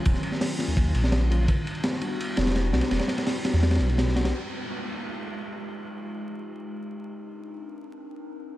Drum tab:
RD |x---x-------x---x---x---x---x---|x---x-x-x---x---x---xxxxx---x-x-|x-x-x-x-----x---x-xxx-x-x---x-x-|--------------------------------|
HH |--------o-----------------------|--------------------------------|--------o-----------------------|--------------------------------|
SD |--o---o-o---o---------o-o-------|--------o-o---------ooooo---o-o-|o-o-o-o-o---o-o-o-oo----o-o-o-o-|--------------------------------|
BD |o---------------o---------------|o-------------------------------|--------------------------------|--------------------------------|

RD |--------------------------------|--------------------------------|
HH |--------------------------------|--------------------------------|
SD |--------------------------------|--------------------------------|
BD |--------------------------------|--------------------------------|